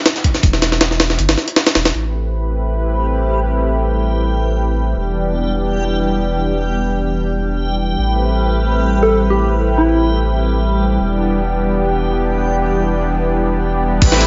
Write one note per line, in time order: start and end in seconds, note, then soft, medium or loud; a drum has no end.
0.06 snare loud
0.06 closed hi-hat medium
0.16 snare loud
0.16 closed hi-hat soft
0.16 closed hi-hat medium
0.24 kick medium
0.24 closed hi-hat medium
0.34 snare soft
0.34 closed hi-hat medium
0.43 1.17 E1 loud
0.43 kick loud
0.43 closed hi-hat medium
0.53 snare soft
0.62 snare medium
0.62 closed hi-hat medium
0.72 snare medium
0.81 snare loud
0.81 closed hi-hat medium
0.91 snare soft
1.00 snare loud
1.00 closed hi-hat medium
1.00 open hi-hat medium
1.10 snare soft
1.19 1.36 G1 loud
1.19 closed hi-hat medium
1.29 snare loud
1.29 open hi-hat medium
1.38 snare soft
1.38 closed hi-hat medium
1.48 closed hi-hat medium
1.56 snare loud
1.56 closed hi-hat medium
1.56 open hi-hat medium
1.67 snare loud
1.67 open hi-hat medium
1.75 1.93 E1 loud
1.75 snare loud
1.75 closed hi-hat medium
1.75 open hi-hat medium
1.85 snare loud
1.85 open hi-hat medium
1.94 4.94 A1 medium
1.94 14.03 G3 medium
1.94 4.94 A3 medium
1.94 4.94 C4 medium
1.94 4.94 E4 medium
1.94 4.94 G4 medium
1.94 4.94 B4 loud
1.94 14.03 G5 medium
4.96 7.96 E1 medium
4.96 7.96 E3 medium
4.96 7.96 G3 medium
4.96 7.96 B3 medium
4.96 7.96 D4 medium
4.96 7.96 G4 loud
7.98 10.98 A1 medium
7.98 10.98 A3 medium
7.98 10.98 C4 medium
7.98 10.98 E4 medium
7.98 10.98 G4 medium
7.98 10.98 B4 medium
9.03 9.08 A4 medium
9.11 9.18 A4 medium
9.30 9.53 G4 medium
9.78 10.06 E4 medium
11.00 14.00 E1 medium
11.00 14.00 E3 medium
11.00 14.00 G3 medium
11.00 14.00 B3 medium
11.00 14.00 D4 medium
11.00 14.00 G4 medium
14.02 14.27 A1 loud
14.02 14.27 A3 loud
14.02 14.27 C4 medium
14.02 14.27 E4 medium
14.02 14.27 G4 medium
14.02 14.27 B4 loud
14.02 kick loud
14.02 closed hi-hat medium
14.02 crash medium
14.12 snare soft
14.12 snare medium
14.21 closed hi-hat medium